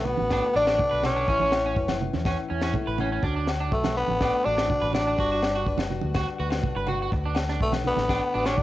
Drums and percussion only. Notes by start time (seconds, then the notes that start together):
0.05 low conga
0.17 high conga
0.30 kick, snare, low agogo
0.67 snare, low agogo
0.79 kick, low conga
1.03 snare, low conga, low agogo
1.28 kick
1.40 high conga
1.52 snare, low agogo
1.76 kick
1.88 snare, high conga, low agogo
2.01 low conga
2.13 snare, high conga
2.25 kick, snare, low agogo
2.62 snare, low agogo
2.74 kick, low conga
2.98 low conga, low agogo
3.23 kick
3.47 snare, low agogo
3.72 kick
3.84 snare, high conga, low agogo
4.08 high conga
4.21 kick, snare, low agogo
4.58 snare, low agogo
4.69 kick, low conga
4.93 snare, low conga, low agogo
5.19 kick
5.42 snare, low agogo
5.67 kick
5.78 snare, high conga, low agogo
5.90 low conga
6.01 high conga
6.14 kick, snare, low agogo
6.50 snare, low agogo
6.63 kick, low conga
6.87 low conga, low agogo
7.12 kick
7.35 snare, low agogo
7.49 snare
7.61 kick
7.72 snare, high conga, low agogo
7.84 low conga
7.96 snare, high conga
8.09 kick, snare, low agogo
8.45 snare, low agogo
8.58 kick, low conga